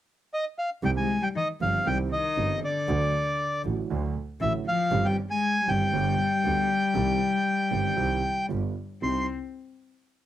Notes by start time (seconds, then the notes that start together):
0.34 D#5
0.59 F5
0.83 C2 C3 D#3 G3 C4 G4 G5
0.97 G#3 G#5
1.22 G3 G5
1.35 D#3 D#5
1.61 G1 G2 D#3 F3 G3 C4 G4 F5
1.85 C2 C3 D#3 G3 C4 G4 G5
2.12 D#3 D#5
2.37 G1 G2 D#3 G3 C4 G4
2.62 D3 D5
2.88 D2 D3 F#3 A3 F#4
3.65 A1 A2 D3 F#3 A3 F#4
3.90 D2 D3 F#3 A3 F#4
4.40 A1 A2 D3 E3 F#3 A3 F#4 E5
4.67 F3 F5
4.91 G1 G2 D#3 G3 C4 G4
5.05 G3 G5
5.30 G#3 G#5
5.68 G1 G2 D#3 G3 C4 G4 G5
5.93 G1 G2 D3 G3 B3 G4
6.44 D2 D3 G3 B3 G4
6.94 C2 C3 D#3 G3 C4 G4
7.71 G1 G2 D#3 G3 C4 G4
7.97 C2 C3 D#3 G3 C4 G4
8.48 G1 G2 D3 G3 B3 F4
9.02 C2 G3 C4 D#4 C6